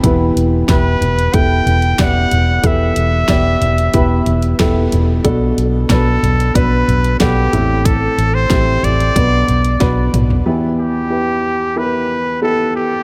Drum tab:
HH |x-x-x-xxx-xxx-x-|x-x-x-xxx-xxx-x-|x-x-x-xxx-xxx-x-|x-x-x-xxx-xxx-x-|
SD |----o-------o---|----o-------o---|----o-------o---|----o-------o---|
T2 |----------------|----------------|----------------|--------------o-|
FT |------o---o---o-|------o---o---o-|------o---o---o-|------o---o----o|
BD |o---o---o---o---|o---o---o---o---|o---o---o---o---|o---o---o---o---|

HH |----------------|
SD |----------------|
T2 |----------------|
FT |----------------|
BD |----------------|